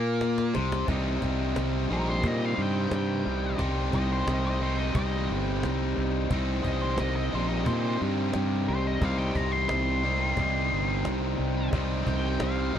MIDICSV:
0, 0, Header, 1, 5, 480
1, 0, Start_track
1, 0, Key_signature, -3, "minor"
1, 0, Tempo, 678733
1, 622, Time_signature, 4, 2, 24, 8
1, 9044, End_track
2, 0, Start_track
2, 0, Title_t, "Lead electric guitar"
2, 0, Program_c, 0, 29
2, 1362, Note_on_c, 0, 70, 89
2, 1474, Note_off_c, 0, 70, 0
2, 1474, Note_on_c, 0, 72, 78
2, 1605, Note_off_c, 0, 72, 0
2, 1605, Note_on_c, 0, 75, 93
2, 1734, Note_off_c, 0, 75, 0
2, 1734, Note_on_c, 0, 77, 76
2, 1834, Note_off_c, 0, 77, 0
2, 1855, Note_on_c, 0, 79, 75
2, 2071, Note_off_c, 0, 79, 0
2, 2094, Note_on_c, 0, 79, 83
2, 2543, Note_off_c, 0, 79, 0
2, 2794, Note_on_c, 0, 75, 90
2, 2904, Note_off_c, 0, 75, 0
2, 2917, Note_on_c, 0, 72, 77
2, 3025, Note_off_c, 0, 72, 0
2, 3033, Note_on_c, 0, 75, 90
2, 3143, Note_off_c, 0, 75, 0
2, 3154, Note_on_c, 0, 75, 90
2, 3264, Note_off_c, 0, 75, 0
2, 3272, Note_on_c, 0, 72, 73
2, 3387, Note_off_c, 0, 72, 0
2, 3387, Note_on_c, 0, 75, 91
2, 3498, Note_off_c, 0, 75, 0
2, 3506, Note_on_c, 0, 75, 109
2, 3736, Note_off_c, 0, 75, 0
2, 4692, Note_on_c, 0, 75, 95
2, 4819, Note_off_c, 0, 75, 0
2, 4819, Note_on_c, 0, 72, 87
2, 4947, Note_off_c, 0, 72, 0
2, 4947, Note_on_c, 0, 75, 89
2, 5056, Note_off_c, 0, 75, 0
2, 5064, Note_on_c, 0, 75, 100
2, 5195, Note_off_c, 0, 75, 0
2, 5195, Note_on_c, 0, 72, 85
2, 5296, Note_off_c, 0, 72, 0
2, 5298, Note_on_c, 0, 75, 78
2, 5421, Note_off_c, 0, 75, 0
2, 5421, Note_on_c, 0, 72, 106
2, 5653, Note_off_c, 0, 72, 0
2, 6143, Note_on_c, 0, 72, 92
2, 6272, Note_off_c, 0, 72, 0
2, 6272, Note_on_c, 0, 75, 83
2, 6382, Note_off_c, 0, 75, 0
2, 6398, Note_on_c, 0, 77, 76
2, 6491, Note_off_c, 0, 77, 0
2, 6491, Note_on_c, 0, 79, 81
2, 6611, Note_off_c, 0, 79, 0
2, 6617, Note_on_c, 0, 82, 81
2, 6730, Note_off_c, 0, 82, 0
2, 6730, Note_on_c, 0, 84, 88
2, 6844, Note_off_c, 0, 84, 0
2, 6853, Note_on_c, 0, 84, 106
2, 8268, Note_off_c, 0, 84, 0
2, 8544, Note_on_c, 0, 79, 97
2, 8775, Note_off_c, 0, 79, 0
2, 8788, Note_on_c, 0, 77, 103
2, 9044, Note_off_c, 0, 77, 0
2, 9044, End_track
3, 0, Start_track
3, 0, Title_t, "Overdriven electric guitar"
3, 0, Program_c, 1, 29
3, 0, Note_on_c, 1, 58, 91
3, 377, Note_off_c, 1, 58, 0
3, 379, Note_on_c, 1, 48, 93
3, 607, Note_off_c, 1, 48, 0
3, 615, Note_on_c, 1, 48, 92
3, 624, Note_on_c, 1, 55, 89
3, 626, Note_on_c, 1, 60, 91
3, 630, Note_on_c, 1, 63, 101
3, 1340, Note_off_c, 1, 63, 0
3, 1343, Note_off_c, 1, 60, 0
3, 1343, Note_on_c, 1, 63, 78
3, 1346, Note_on_c, 1, 60, 68
3, 1349, Note_off_c, 1, 55, 0
3, 1352, Note_on_c, 1, 55, 66
3, 1353, Note_off_c, 1, 48, 0
3, 1356, Note_on_c, 1, 48, 59
3, 2528, Note_off_c, 1, 48, 0
3, 2531, Note_on_c, 1, 48, 99
3, 2536, Note_off_c, 1, 55, 0
3, 2538, Note_off_c, 1, 60, 0
3, 2538, Note_on_c, 1, 55, 98
3, 2541, Note_on_c, 1, 60, 95
3, 2542, Note_off_c, 1, 63, 0
3, 2545, Note_on_c, 1, 63, 95
3, 3259, Note_off_c, 1, 63, 0
3, 3262, Note_on_c, 1, 63, 77
3, 3263, Note_off_c, 1, 60, 0
3, 3266, Note_on_c, 1, 60, 66
3, 3272, Note_off_c, 1, 55, 0
3, 3274, Note_on_c, 1, 55, 65
3, 3276, Note_off_c, 1, 48, 0
3, 3279, Note_on_c, 1, 48, 53
3, 4454, Note_off_c, 1, 48, 0
3, 4456, Note_on_c, 1, 48, 86
3, 4462, Note_off_c, 1, 55, 0
3, 4463, Note_off_c, 1, 60, 0
3, 4465, Note_on_c, 1, 55, 84
3, 4466, Note_on_c, 1, 60, 98
3, 4471, Note_off_c, 1, 63, 0
3, 4474, Note_on_c, 1, 63, 103
3, 5177, Note_off_c, 1, 63, 0
3, 5180, Note_on_c, 1, 63, 82
3, 5187, Note_off_c, 1, 60, 0
3, 5189, Note_off_c, 1, 55, 0
3, 5190, Note_on_c, 1, 60, 74
3, 5192, Note_on_c, 1, 55, 66
3, 5195, Note_off_c, 1, 48, 0
3, 5198, Note_on_c, 1, 48, 57
3, 6377, Note_off_c, 1, 48, 0
3, 6380, Note_on_c, 1, 48, 97
3, 6385, Note_off_c, 1, 55, 0
3, 6386, Note_off_c, 1, 60, 0
3, 6388, Note_on_c, 1, 55, 93
3, 6389, Note_on_c, 1, 60, 96
3, 6394, Note_off_c, 1, 63, 0
3, 6397, Note_on_c, 1, 63, 100
3, 7090, Note_off_c, 1, 63, 0
3, 7093, Note_on_c, 1, 63, 79
3, 7101, Note_off_c, 1, 60, 0
3, 7104, Note_off_c, 1, 55, 0
3, 7104, Note_on_c, 1, 60, 63
3, 7107, Note_on_c, 1, 55, 61
3, 7112, Note_off_c, 1, 48, 0
3, 7115, Note_on_c, 1, 48, 59
3, 8293, Note_off_c, 1, 48, 0
3, 8295, Note_on_c, 1, 48, 93
3, 8300, Note_off_c, 1, 55, 0
3, 8303, Note_on_c, 1, 55, 98
3, 8304, Note_off_c, 1, 60, 0
3, 8306, Note_off_c, 1, 63, 0
3, 8306, Note_on_c, 1, 60, 104
3, 8309, Note_on_c, 1, 63, 107
3, 9012, Note_off_c, 1, 63, 0
3, 9015, Note_on_c, 1, 63, 72
3, 9016, Note_off_c, 1, 60, 0
3, 9019, Note_on_c, 1, 60, 70
3, 9022, Note_off_c, 1, 55, 0
3, 9027, Note_off_c, 1, 48, 0
3, 9044, Note_off_c, 1, 60, 0
3, 9044, Note_off_c, 1, 63, 0
3, 9044, End_track
4, 0, Start_track
4, 0, Title_t, "Fingered electric bass"
4, 0, Program_c, 2, 33
4, 0, Note_on_c, 2, 46, 91
4, 363, Note_off_c, 2, 46, 0
4, 399, Note_on_c, 2, 36, 90
4, 614, Note_off_c, 2, 36, 0
4, 620, Note_on_c, 2, 36, 94
4, 848, Note_off_c, 2, 36, 0
4, 863, Note_on_c, 2, 36, 81
4, 1090, Note_off_c, 2, 36, 0
4, 1114, Note_on_c, 2, 36, 84
4, 1336, Note_off_c, 2, 36, 0
4, 1349, Note_on_c, 2, 34, 85
4, 1573, Note_off_c, 2, 34, 0
4, 1583, Note_on_c, 2, 46, 93
4, 1809, Note_off_c, 2, 46, 0
4, 1824, Note_on_c, 2, 43, 80
4, 2050, Note_off_c, 2, 43, 0
4, 2060, Note_on_c, 2, 43, 83
4, 2288, Note_off_c, 2, 43, 0
4, 2304, Note_on_c, 2, 36, 78
4, 2530, Note_off_c, 2, 36, 0
4, 2541, Note_on_c, 2, 36, 93
4, 2768, Note_off_c, 2, 36, 0
4, 2780, Note_on_c, 2, 36, 84
4, 3008, Note_off_c, 2, 36, 0
4, 3018, Note_on_c, 2, 36, 83
4, 3474, Note_off_c, 2, 36, 0
4, 3498, Note_on_c, 2, 36, 93
4, 3727, Note_off_c, 2, 36, 0
4, 3750, Note_on_c, 2, 31, 84
4, 3973, Note_off_c, 2, 31, 0
4, 3987, Note_on_c, 2, 36, 83
4, 4211, Note_off_c, 2, 36, 0
4, 4227, Note_on_c, 2, 36, 79
4, 4451, Note_off_c, 2, 36, 0
4, 4458, Note_on_c, 2, 36, 100
4, 4686, Note_off_c, 2, 36, 0
4, 4700, Note_on_c, 2, 36, 82
4, 4927, Note_off_c, 2, 36, 0
4, 4951, Note_on_c, 2, 36, 89
4, 5173, Note_off_c, 2, 36, 0
4, 5188, Note_on_c, 2, 34, 81
4, 5412, Note_off_c, 2, 34, 0
4, 5422, Note_on_c, 2, 46, 98
4, 5648, Note_off_c, 2, 46, 0
4, 5668, Note_on_c, 2, 43, 81
4, 5891, Note_off_c, 2, 43, 0
4, 5906, Note_on_c, 2, 43, 81
4, 6131, Note_off_c, 2, 43, 0
4, 6143, Note_on_c, 2, 36, 76
4, 6369, Note_off_c, 2, 36, 0
4, 6374, Note_on_c, 2, 36, 102
4, 6604, Note_off_c, 2, 36, 0
4, 6611, Note_on_c, 2, 36, 83
4, 6843, Note_off_c, 2, 36, 0
4, 6862, Note_on_c, 2, 36, 78
4, 7316, Note_off_c, 2, 36, 0
4, 7334, Note_on_c, 2, 36, 94
4, 7564, Note_off_c, 2, 36, 0
4, 7585, Note_on_c, 2, 31, 76
4, 7810, Note_off_c, 2, 31, 0
4, 7820, Note_on_c, 2, 36, 81
4, 8048, Note_off_c, 2, 36, 0
4, 8056, Note_on_c, 2, 36, 77
4, 8286, Note_off_c, 2, 36, 0
4, 8291, Note_on_c, 2, 36, 98
4, 8523, Note_off_c, 2, 36, 0
4, 8532, Note_on_c, 2, 36, 84
4, 8764, Note_off_c, 2, 36, 0
4, 8779, Note_on_c, 2, 36, 78
4, 9007, Note_off_c, 2, 36, 0
4, 9017, Note_on_c, 2, 34, 84
4, 9044, Note_off_c, 2, 34, 0
4, 9044, End_track
5, 0, Start_track
5, 0, Title_t, "Cajon"
5, 148, Note_on_c, 9, 38, 77
5, 219, Note_off_c, 9, 38, 0
5, 268, Note_on_c, 9, 38, 77
5, 338, Note_off_c, 9, 38, 0
5, 386, Note_on_c, 9, 38, 97
5, 457, Note_off_c, 9, 38, 0
5, 511, Note_on_c, 9, 38, 88
5, 581, Note_off_c, 9, 38, 0
5, 623, Note_on_c, 9, 36, 96
5, 693, Note_off_c, 9, 36, 0
5, 862, Note_on_c, 9, 36, 68
5, 933, Note_off_c, 9, 36, 0
5, 1104, Note_on_c, 9, 38, 102
5, 1175, Note_off_c, 9, 38, 0
5, 1581, Note_on_c, 9, 36, 110
5, 1652, Note_off_c, 9, 36, 0
5, 2061, Note_on_c, 9, 38, 98
5, 2132, Note_off_c, 9, 38, 0
5, 2539, Note_on_c, 9, 36, 91
5, 2610, Note_off_c, 9, 36, 0
5, 2780, Note_on_c, 9, 36, 78
5, 2851, Note_off_c, 9, 36, 0
5, 3024, Note_on_c, 9, 38, 104
5, 3094, Note_off_c, 9, 38, 0
5, 3500, Note_on_c, 9, 36, 105
5, 3571, Note_off_c, 9, 36, 0
5, 3983, Note_on_c, 9, 38, 101
5, 4054, Note_off_c, 9, 38, 0
5, 4459, Note_on_c, 9, 36, 97
5, 4530, Note_off_c, 9, 36, 0
5, 4699, Note_on_c, 9, 36, 75
5, 4769, Note_off_c, 9, 36, 0
5, 4933, Note_on_c, 9, 38, 103
5, 5004, Note_off_c, 9, 38, 0
5, 5418, Note_on_c, 9, 36, 108
5, 5489, Note_off_c, 9, 36, 0
5, 5894, Note_on_c, 9, 38, 99
5, 5965, Note_off_c, 9, 38, 0
5, 6376, Note_on_c, 9, 36, 105
5, 6447, Note_off_c, 9, 36, 0
5, 6614, Note_on_c, 9, 36, 77
5, 6685, Note_off_c, 9, 36, 0
5, 6853, Note_on_c, 9, 38, 110
5, 6924, Note_off_c, 9, 38, 0
5, 7333, Note_on_c, 9, 36, 95
5, 7404, Note_off_c, 9, 36, 0
5, 7578, Note_on_c, 9, 38, 30
5, 7649, Note_off_c, 9, 38, 0
5, 7814, Note_on_c, 9, 38, 100
5, 7885, Note_off_c, 9, 38, 0
5, 8294, Note_on_c, 9, 36, 101
5, 8364, Note_off_c, 9, 36, 0
5, 8533, Note_on_c, 9, 36, 79
5, 8604, Note_off_c, 9, 36, 0
5, 8769, Note_on_c, 9, 38, 119
5, 8839, Note_off_c, 9, 38, 0
5, 9044, End_track
0, 0, End_of_file